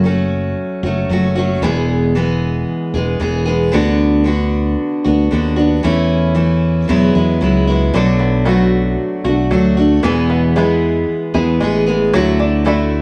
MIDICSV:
0, 0, Header, 1, 4, 480
1, 0, Start_track
1, 0, Tempo, 525855
1, 1484, Time_signature, 4, 2, 24, 8
1, 11884, End_track
2, 0, Start_track
2, 0, Title_t, "Five-string banjo"
2, 0, Program_c, 0, 105
2, 7248, Note_on_c, 0, 50, 66
2, 7480, Note_on_c, 0, 59, 51
2, 7717, Note_on_c, 0, 57, 54
2, 7719, Note_off_c, 0, 59, 0
2, 7722, Note_on_c, 0, 59, 57
2, 7730, Note_on_c, 0, 66, 59
2, 8427, Note_off_c, 0, 66, 0
2, 8438, Note_on_c, 0, 66, 54
2, 8669, Note_off_c, 0, 57, 0
2, 8680, Note_on_c, 0, 57, 56
2, 9154, Note_off_c, 0, 50, 0
2, 9157, Note_on_c, 0, 52, 68
2, 9206, Note_off_c, 0, 66, 0
2, 9207, Note_off_c, 0, 59, 0
2, 9208, Note_off_c, 0, 57, 0
2, 9399, Note_on_c, 0, 59, 54
2, 9635, Note_off_c, 0, 59, 0
2, 9639, Note_on_c, 0, 56, 52
2, 9646, Note_on_c, 0, 59, 53
2, 9653, Note_on_c, 0, 64, 61
2, 10353, Note_off_c, 0, 64, 0
2, 10357, Note_on_c, 0, 64, 57
2, 10581, Note_off_c, 0, 56, 0
2, 10592, Note_on_c, 0, 56, 58
2, 11072, Note_off_c, 0, 52, 0
2, 11077, Note_on_c, 0, 54, 71
2, 11120, Note_off_c, 0, 56, 0
2, 11125, Note_off_c, 0, 59, 0
2, 11311, Note_off_c, 0, 64, 0
2, 11315, Note_on_c, 0, 62, 59
2, 11547, Note_off_c, 0, 62, 0
2, 11554, Note_on_c, 0, 57, 60
2, 11559, Note_on_c, 0, 62, 56
2, 11565, Note_on_c, 0, 64, 63
2, 11884, Note_off_c, 0, 54, 0
2, 11884, Note_off_c, 0, 57, 0
2, 11884, Note_off_c, 0, 62, 0
2, 11884, Note_off_c, 0, 64, 0
2, 11884, End_track
3, 0, Start_track
3, 0, Title_t, "Steel-string acoustic guitar"
3, 0, Program_c, 1, 25
3, 34, Note_on_c, 1, 54, 55
3, 47, Note_on_c, 1, 57, 58
3, 54, Note_on_c, 1, 61, 64
3, 58, Note_on_c, 1, 66, 63
3, 749, Note_off_c, 1, 66, 0
3, 759, Note_off_c, 1, 54, 0
3, 760, Note_on_c, 1, 66, 46
3, 766, Note_off_c, 1, 57, 0
3, 766, Note_off_c, 1, 61, 0
3, 777, Note_on_c, 1, 61, 48
3, 785, Note_on_c, 1, 57, 45
3, 791, Note_on_c, 1, 54, 42
3, 993, Note_off_c, 1, 54, 0
3, 1002, Note_off_c, 1, 66, 0
3, 1003, Note_off_c, 1, 57, 0
3, 1004, Note_on_c, 1, 54, 54
3, 1010, Note_off_c, 1, 61, 0
3, 1014, Note_on_c, 1, 57, 56
3, 1026, Note_on_c, 1, 61, 62
3, 1032, Note_on_c, 1, 66, 68
3, 1225, Note_off_c, 1, 66, 0
3, 1236, Note_on_c, 1, 66, 51
3, 1243, Note_off_c, 1, 61, 0
3, 1244, Note_off_c, 1, 54, 0
3, 1249, Note_off_c, 1, 57, 0
3, 1254, Note_on_c, 1, 61, 54
3, 1261, Note_on_c, 1, 57, 45
3, 1269, Note_on_c, 1, 54, 45
3, 1479, Note_on_c, 1, 40, 67
3, 1481, Note_off_c, 1, 66, 0
3, 1482, Note_off_c, 1, 54, 0
3, 1482, Note_on_c, 1, 47, 73
3, 1486, Note_on_c, 1, 52, 77
3, 1489, Note_off_c, 1, 61, 0
3, 1492, Note_off_c, 1, 57, 0
3, 1496, Note_on_c, 1, 56, 78
3, 1497, Note_on_c, 1, 59, 75
3, 1498, Note_on_c, 1, 68, 83
3, 1952, Note_off_c, 1, 52, 0
3, 1962, Note_off_c, 1, 56, 0
3, 1963, Note_off_c, 1, 40, 0
3, 1963, Note_on_c, 1, 52, 58
3, 1965, Note_off_c, 1, 47, 0
3, 1973, Note_off_c, 1, 68, 0
3, 1973, Note_on_c, 1, 56, 59
3, 1976, Note_off_c, 1, 59, 0
3, 1980, Note_on_c, 1, 59, 65
3, 1991, Note_on_c, 1, 68, 58
3, 2678, Note_off_c, 1, 68, 0
3, 2686, Note_off_c, 1, 59, 0
3, 2687, Note_off_c, 1, 52, 0
3, 2689, Note_on_c, 1, 68, 52
3, 2692, Note_off_c, 1, 56, 0
3, 2697, Note_on_c, 1, 59, 47
3, 2707, Note_on_c, 1, 56, 45
3, 2712, Note_on_c, 1, 52, 43
3, 2906, Note_off_c, 1, 52, 0
3, 2914, Note_off_c, 1, 56, 0
3, 2917, Note_on_c, 1, 52, 57
3, 2918, Note_off_c, 1, 59, 0
3, 2925, Note_on_c, 1, 56, 58
3, 2929, Note_off_c, 1, 68, 0
3, 2929, Note_on_c, 1, 59, 63
3, 2941, Note_on_c, 1, 68, 60
3, 3142, Note_off_c, 1, 68, 0
3, 3153, Note_on_c, 1, 68, 53
3, 3158, Note_off_c, 1, 59, 0
3, 3163, Note_off_c, 1, 52, 0
3, 3164, Note_off_c, 1, 56, 0
3, 3169, Note_on_c, 1, 59, 47
3, 3175, Note_on_c, 1, 56, 46
3, 3183, Note_on_c, 1, 52, 42
3, 3389, Note_off_c, 1, 52, 0
3, 3392, Note_off_c, 1, 59, 0
3, 3393, Note_on_c, 1, 50, 79
3, 3399, Note_off_c, 1, 56, 0
3, 3402, Note_off_c, 1, 68, 0
3, 3403, Note_on_c, 1, 59, 82
3, 3410, Note_on_c, 1, 62, 80
3, 3416, Note_on_c, 1, 66, 85
3, 3859, Note_off_c, 1, 50, 0
3, 3870, Note_on_c, 1, 50, 53
3, 3873, Note_off_c, 1, 59, 0
3, 3882, Note_off_c, 1, 62, 0
3, 3884, Note_on_c, 1, 59, 63
3, 3888, Note_off_c, 1, 66, 0
3, 3893, Note_on_c, 1, 62, 57
3, 3899, Note_on_c, 1, 66, 67
3, 4593, Note_off_c, 1, 66, 0
3, 4601, Note_off_c, 1, 50, 0
3, 4604, Note_on_c, 1, 66, 55
3, 4608, Note_off_c, 1, 59, 0
3, 4608, Note_off_c, 1, 62, 0
3, 4619, Note_on_c, 1, 62, 47
3, 4628, Note_on_c, 1, 59, 43
3, 4844, Note_off_c, 1, 59, 0
3, 4845, Note_on_c, 1, 50, 57
3, 4848, Note_off_c, 1, 66, 0
3, 4852, Note_off_c, 1, 62, 0
3, 4855, Note_on_c, 1, 59, 58
3, 4863, Note_on_c, 1, 62, 53
3, 4871, Note_on_c, 1, 66, 62
3, 5066, Note_off_c, 1, 66, 0
3, 5077, Note_off_c, 1, 62, 0
3, 5077, Note_on_c, 1, 66, 54
3, 5088, Note_off_c, 1, 50, 0
3, 5088, Note_on_c, 1, 62, 48
3, 5093, Note_off_c, 1, 59, 0
3, 5106, Note_on_c, 1, 59, 46
3, 5321, Note_on_c, 1, 52, 72
3, 5324, Note_off_c, 1, 66, 0
3, 5325, Note_off_c, 1, 59, 0
3, 5329, Note_off_c, 1, 62, 0
3, 5329, Note_on_c, 1, 57, 79
3, 5335, Note_on_c, 1, 61, 82
3, 5337, Note_on_c, 1, 64, 80
3, 5781, Note_off_c, 1, 52, 0
3, 5790, Note_off_c, 1, 57, 0
3, 5792, Note_on_c, 1, 52, 61
3, 5795, Note_off_c, 1, 61, 0
3, 5801, Note_on_c, 1, 57, 58
3, 5803, Note_off_c, 1, 64, 0
3, 5806, Note_on_c, 1, 61, 57
3, 5814, Note_on_c, 1, 64, 62
3, 6277, Note_on_c, 1, 40, 66
3, 6281, Note_off_c, 1, 52, 0
3, 6285, Note_off_c, 1, 57, 0
3, 6285, Note_on_c, 1, 47, 70
3, 6287, Note_off_c, 1, 61, 0
3, 6287, Note_off_c, 1, 64, 0
3, 6288, Note_on_c, 1, 56, 70
3, 6289, Note_on_c, 1, 54, 72
3, 6292, Note_on_c, 1, 59, 76
3, 6298, Note_on_c, 1, 64, 75
3, 6515, Note_off_c, 1, 64, 0
3, 6519, Note_off_c, 1, 59, 0
3, 6523, Note_off_c, 1, 40, 0
3, 6526, Note_on_c, 1, 64, 50
3, 6527, Note_off_c, 1, 47, 0
3, 6528, Note_off_c, 1, 56, 0
3, 6529, Note_off_c, 1, 54, 0
3, 6530, Note_on_c, 1, 59, 46
3, 6544, Note_on_c, 1, 56, 41
3, 6551, Note_on_c, 1, 54, 38
3, 6751, Note_off_c, 1, 54, 0
3, 6762, Note_off_c, 1, 56, 0
3, 6762, Note_on_c, 1, 54, 55
3, 6767, Note_off_c, 1, 64, 0
3, 6769, Note_off_c, 1, 59, 0
3, 6773, Note_on_c, 1, 56, 59
3, 6786, Note_on_c, 1, 59, 56
3, 6789, Note_on_c, 1, 64, 67
3, 6993, Note_off_c, 1, 64, 0
3, 7003, Note_off_c, 1, 59, 0
3, 7004, Note_off_c, 1, 54, 0
3, 7004, Note_on_c, 1, 64, 53
3, 7010, Note_off_c, 1, 56, 0
3, 7014, Note_on_c, 1, 59, 46
3, 7028, Note_on_c, 1, 56, 50
3, 7033, Note_on_c, 1, 54, 46
3, 7241, Note_off_c, 1, 54, 0
3, 7244, Note_on_c, 1, 47, 77
3, 7245, Note_off_c, 1, 64, 0
3, 7250, Note_off_c, 1, 59, 0
3, 7252, Note_on_c, 1, 54, 71
3, 7254, Note_off_c, 1, 56, 0
3, 7258, Note_on_c, 1, 57, 75
3, 7261, Note_on_c, 1, 62, 82
3, 7266, Note_on_c, 1, 66, 73
3, 7707, Note_off_c, 1, 54, 0
3, 7716, Note_off_c, 1, 57, 0
3, 7718, Note_on_c, 1, 54, 54
3, 7724, Note_off_c, 1, 47, 0
3, 7725, Note_off_c, 1, 62, 0
3, 7727, Note_on_c, 1, 57, 55
3, 7735, Note_off_c, 1, 66, 0
3, 7736, Note_on_c, 1, 62, 58
3, 7746, Note_on_c, 1, 66, 68
3, 8431, Note_off_c, 1, 66, 0
3, 8440, Note_off_c, 1, 54, 0
3, 8442, Note_on_c, 1, 66, 55
3, 8444, Note_off_c, 1, 57, 0
3, 8445, Note_off_c, 1, 62, 0
3, 8456, Note_on_c, 1, 62, 44
3, 8469, Note_on_c, 1, 57, 37
3, 8676, Note_on_c, 1, 54, 53
3, 8678, Note_off_c, 1, 57, 0
3, 8682, Note_off_c, 1, 66, 0
3, 8689, Note_off_c, 1, 62, 0
3, 8689, Note_on_c, 1, 57, 59
3, 8700, Note_on_c, 1, 62, 64
3, 8706, Note_on_c, 1, 66, 66
3, 8906, Note_off_c, 1, 66, 0
3, 8917, Note_on_c, 1, 66, 56
3, 8919, Note_off_c, 1, 54, 0
3, 8919, Note_off_c, 1, 62, 0
3, 8925, Note_off_c, 1, 57, 0
3, 8930, Note_on_c, 1, 62, 51
3, 8943, Note_on_c, 1, 57, 40
3, 9153, Note_on_c, 1, 40, 77
3, 9157, Note_on_c, 1, 47, 78
3, 9159, Note_off_c, 1, 66, 0
3, 9161, Note_off_c, 1, 57, 0
3, 9164, Note_off_c, 1, 62, 0
3, 9164, Note_on_c, 1, 52, 78
3, 9165, Note_on_c, 1, 56, 78
3, 9168, Note_on_c, 1, 59, 78
3, 9175, Note_on_c, 1, 68, 80
3, 9633, Note_off_c, 1, 52, 0
3, 9634, Note_off_c, 1, 56, 0
3, 9635, Note_off_c, 1, 40, 0
3, 9637, Note_off_c, 1, 47, 0
3, 9637, Note_on_c, 1, 52, 63
3, 9643, Note_off_c, 1, 59, 0
3, 9645, Note_on_c, 1, 56, 57
3, 9646, Note_off_c, 1, 68, 0
3, 9654, Note_on_c, 1, 59, 61
3, 9662, Note_on_c, 1, 68, 67
3, 10339, Note_off_c, 1, 68, 0
3, 10347, Note_off_c, 1, 59, 0
3, 10350, Note_on_c, 1, 68, 54
3, 10354, Note_off_c, 1, 56, 0
3, 10358, Note_on_c, 1, 59, 47
3, 10365, Note_on_c, 1, 56, 44
3, 10372, Note_off_c, 1, 52, 0
3, 10375, Note_on_c, 1, 52, 42
3, 10582, Note_off_c, 1, 52, 0
3, 10593, Note_off_c, 1, 68, 0
3, 10593, Note_on_c, 1, 52, 59
3, 10594, Note_off_c, 1, 56, 0
3, 10597, Note_off_c, 1, 59, 0
3, 10605, Note_on_c, 1, 56, 62
3, 10612, Note_on_c, 1, 59, 67
3, 10623, Note_on_c, 1, 68, 62
3, 10817, Note_off_c, 1, 68, 0
3, 10828, Note_off_c, 1, 59, 0
3, 10828, Note_on_c, 1, 68, 60
3, 10834, Note_off_c, 1, 52, 0
3, 10837, Note_off_c, 1, 56, 0
3, 10839, Note_on_c, 1, 59, 56
3, 10848, Note_on_c, 1, 56, 50
3, 10856, Note_on_c, 1, 52, 46
3, 11071, Note_off_c, 1, 52, 0
3, 11071, Note_off_c, 1, 68, 0
3, 11075, Note_on_c, 1, 50, 74
3, 11076, Note_off_c, 1, 56, 0
3, 11076, Note_off_c, 1, 59, 0
3, 11080, Note_on_c, 1, 57, 83
3, 11092, Note_on_c, 1, 64, 78
3, 11093, Note_on_c, 1, 66, 87
3, 11530, Note_off_c, 1, 50, 0
3, 11539, Note_off_c, 1, 57, 0
3, 11541, Note_on_c, 1, 50, 53
3, 11550, Note_on_c, 1, 57, 63
3, 11554, Note_off_c, 1, 64, 0
3, 11557, Note_off_c, 1, 66, 0
3, 11557, Note_on_c, 1, 64, 61
3, 11568, Note_on_c, 1, 66, 66
3, 11884, Note_off_c, 1, 50, 0
3, 11884, Note_off_c, 1, 57, 0
3, 11884, Note_off_c, 1, 64, 0
3, 11884, Note_off_c, 1, 66, 0
3, 11884, End_track
4, 0, Start_track
4, 0, Title_t, "Fingered electric bass"
4, 0, Program_c, 2, 33
4, 0, Note_on_c, 2, 30, 87
4, 486, Note_off_c, 2, 30, 0
4, 758, Note_on_c, 2, 30, 89
4, 988, Note_off_c, 2, 30, 0
4, 998, Note_on_c, 2, 30, 90
4, 1458, Note_off_c, 2, 30, 0
4, 1477, Note_on_c, 2, 28, 88
4, 2408, Note_off_c, 2, 28, 0
4, 2682, Note_on_c, 2, 28, 90
4, 2913, Note_off_c, 2, 28, 0
4, 2920, Note_on_c, 2, 28, 92
4, 3381, Note_off_c, 2, 28, 0
4, 3409, Note_on_c, 2, 38, 87
4, 4334, Note_off_c, 2, 38, 0
4, 4614, Note_on_c, 2, 38, 86
4, 4841, Note_off_c, 2, 38, 0
4, 4856, Note_on_c, 2, 39, 96
4, 5310, Note_off_c, 2, 39, 0
4, 5332, Note_on_c, 2, 40, 88
4, 6254, Note_off_c, 2, 40, 0
4, 6290, Note_on_c, 2, 40, 89
4, 6517, Note_off_c, 2, 40, 0
4, 6525, Note_on_c, 2, 40, 91
4, 6754, Note_off_c, 2, 40, 0
4, 6767, Note_on_c, 2, 37, 90
4, 7223, Note_off_c, 2, 37, 0
4, 7251, Note_on_c, 2, 35, 83
4, 8170, Note_off_c, 2, 35, 0
4, 8442, Note_on_c, 2, 35, 89
4, 8670, Note_off_c, 2, 35, 0
4, 8679, Note_on_c, 2, 38, 94
4, 9135, Note_off_c, 2, 38, 0
4, 9160, Note_on_c, 2, 40, 82
4, 10081, Note_off_c, 2, 40, 0
4, 10355, Note_on_c, 2, 40, 93
4, 10583, Note_off_c, 2, 40, 0
4, 10595, Note_on_c, 2, 33, 97
4, 11050, Note_off_c, 2, 33, 0
4, 11081, Note_on_c, 2, 38, 94
4, 11884, Note_off_c, 2, 38, 0
4, 11884, End_track
0, 0, End_of_file